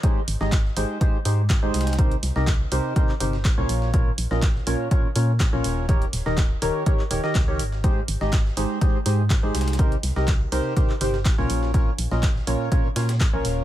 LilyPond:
<<
  \new Staff \with { instrumentName = "Synth stab" } { \time 4/4 \key aes \major \tempo 4 = 123 <aes ees' g' aes' c''>16 r8 <aes ees' g' aes' ees''>16 r8 <aes ees' g' aes' c''>8 <aes ees' g' aes' c''>16 r16 <aes ees' g' aes' c''>16 r8 <aes ees' g' aes' c''>8. | <c ees' g' bes' c''>16 r8 <c ees' g' bes' ees''>16 r8 <c ees' g' bes' c''>8 <c ees' g' bes' c''>16 r16 <c ees' g' bes' c''>16 r8 <bes, des' f' bes' des''>8. | <bes, des' f' bes' des''>16 r8 <bes, des' f' bes' ees''>16 r8 <bes, des' f' bes' des''>8 <bes, des' f' bes' des''>16 r16 <bes, des' f' bes' des''>16 r8 <bes, des' f' bes' des''>8. | <ees ees' g' bes' des''>16 r8 <ees ees' g' bes' ees''>16 r8 <ees ees' g' bes' des''>8 <ees ees' g' bes' des''>16 r16 <ees ees' g' bes' des''>16 <ees ees' g' bes' ees''>16 r16 <ees ees' g' bes' des''>16 r8 |
<aes ees' g' aes' c''>16 r8 <aes ees' g' aes' ees''>16 r8 <aes ees' g' aes' c''>8 <aes ees' g' aes' c''>16 r16 <aes ees' g' aes' c''>16 r8 <aes ees' g' aes' c''>8. | <c ees' g' bes' c''>16 r8 <c ees' g' bes' ees''>16 r8 <c ees' g' bes' c''>8 <c ees' g' bes' c''>16 r16 <c ees' g' bes' c''>16 r8 <bes, des' f' bes' des''>8. | <bes, des' f' bes' des''>16 r8 <bes, des' f' bes' ees''>16 r8 <bes, des' f' bes' des''>8 <bes, des' f' bes' des''>16 r16 <bes, des' f' bes' des''>16 r8 <bes, des' f' bes' des''>8. | }
  \new Staff \with { instrumentName = "FM bass" } { \clef bass \time 4/4 \key aes \major r8 aes,,16 aes,,8 r16 aes,,16 r8. aes,8 r16 aes,,16 c,8~ | c,16 r16 c,16 c,8 r16 c,16 r8. g,,8 r16 c,16 bes,,8~ | bes,,16 r16 bes,,16 bes,,8 r16 bes,,16 r8. bes,8 r16 bes,,16 ees,,8~ | ees,,16 r16 ees,,16 ees,,8 r16 ees,,16 r8. ees,,16 r16 des,8 aes,,8~ |
aes,,16 r16 aes,,16 aes,,8 r16 aes,,16 r8. aes,8 r16 aes,,16 c,8~ | c,16 r16 c,16 c,8 r16 c,16 r8. g,,8 r16 c,16 bes,,8~ | bes,,16 r16 bes,,16 bes,,8 r16 bes,,16 r8. bes,8 r16 bes,,16 ees,,8 | }
  \new DrumStaff \with { instrumentName = "Drums" } \drummode { \time 4/4 <hh bd>8 <hh hho>16 sn16 <hc hh bd sn>16 sn16 <hh hho>8 <hh bd>8 <hh hho>8 <hc hh bd sn>8 <hh hho sn>32 <hh sn>32 <hh sn>32 <hh sn>32 | <hh bd>16 hh16 <hh hho sn>16 sn16 <hc hh bd sn>8 <hh hho>8 <hh bd>16 hc16 <hh hho>16 sn16 <hc hh bd sn>8 <hh hho>16 sn16 | <hh bd>8 <hh hho>16 sn16 <hc hh bd sn>16 sn16 <hh hho>8 <hh bd>8 <hh hho>8 <hc hh bd sn>8 <hh hho sn>8 | <hh bd>16 hh16 <hh hho sn>16 sn16 <hc hh bd sn>8 <hh hho>8 <hh bd>16 hc16 <hh hho>16 sn16 <hc hh bd sn>8 <hh hho>16 sn16 |
<hh bd>8 <hh hho>16 sn16 <hc hh bd sn>16 sn16 <hh hho>8 <hh bd>8 <hh hho>8 <hc hh bd sn>8 <hh hho sn>32 <hh sn>32 <hh sn>32 <hh sn>32 | <hh bd>16 hh16 <hh hho sn>16 sn16 <hc hh bd sn>8 <hh hho>8 <hh bd>16 hc16 <hh hho>16 sn16 <hc hh bd sn>8 <hh hho>16 sn16 | <hh bd>8 <hh hho>16 sn16 <hc hh bd sn>16 sn16 <hh hho>8 <hh bd>8 <hh hho sn>16 <hh sn>16 <hc hh bd sn>8 <hh hho sn>8 | }
>>